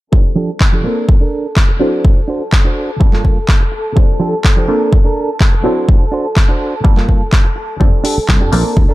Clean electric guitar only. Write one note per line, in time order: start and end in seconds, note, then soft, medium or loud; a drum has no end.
0.36 0.49 F3 loud
0.36 0.49 D4 loud
0.36 0.50 G4 loud
0.36 0.50 A4 loud
0.60 muted clean electric guitar stroke soft
0.73 0.84 F3 medium
0.73 0.82 D4 medium
0.73 0.84 G4 medium
0.73 0.84 A4 medium
0.84 1.13 D4 medium
0.84 1.14 A4 medium
0.84 1.14 A#4 medium
1.21 1.45 D4 loud
1.21 1.46 A4 medium
1.21 1.46 A#4 loud
1.69 muted clean electric guitar stroke medium
1.79 2.19 D4 medium
1.79 2.20 F#4 medium
1.79 2.20 C5 medium
2.28 2.41 D4 loud
2.28 2.42 F#4 loud
2.28 2.42 C5 loud
2.52 muted clean electric guitar stroke soft
2.65 2.89 D4 medium
2.65 2.90 F#4 medium
2.65 2.90 C5 medium
3.13 3.37 G2 loud
3.13 3.37 A#3 medium
3.13 3.38 F4 loud
3.13 3.38 A4 loud
3.61 muted clean electric guitar stroke medium
3.72 muted clean electric guitar stroke soft
4.20 4.33 F3 loud
4.20 4.33 D4 medium
4.20 4.34 G4 medium
4.20 4.34 A4 loud
4.44 muted clean electric guitar stroke soft
4.57 4.68 F3 medium
4.57 4.66 D4 medium
4.57 4.68 G4 medium
4.57 4.69 C5 medium
4.68 4.97 D4 medium
4.68 4.98 A4 medium
4.68 4.98 A#4 loud
5.04 5.29 D4 loud
5.04 5.30 A4 loud
5.04 5.30 A#4 loud
5.53 muted clean electric guitar stroke medium
5.64 6.03 D4 medium
5.64 6.04 F#4 medium
5.64 6.04 C5 medium
6.12 6.25 D4 loud
6.12 6.26 F#4 loud
6.12 6.26 C5 loud
6.36 muted clean electric guitar stroke soft
6.49 6.73 D4 medium
6.49 6.74 F#4 medium
6.49 6.74 C5 medium
6.97 7.21 G2 loud
6.97 7.21 A#3 loud
6.97 7.22 F4 loud
6.97 7.22 A4 loud
7.45 muted clean electric guitar stroke medium
7.56 muted clean electric guitar stroke soft
8.04 8.17 D4 loud
8.04 8.18 G4 medium
8.04 8.18 A4 loud
8.28 muted clean electric guitar stroke soft
8.41 8.51 D4 medium
8.41 8.52 G4 medium
8.41 8.51 A4 medium
8.52 8.81 D4 medium
8.52 8.82 A4 medium
8.52 8.82 A#4 medium
8.89 8.94 D4 loud
8.89 8.94 A4 medium
8.89 8.94 A#4 loud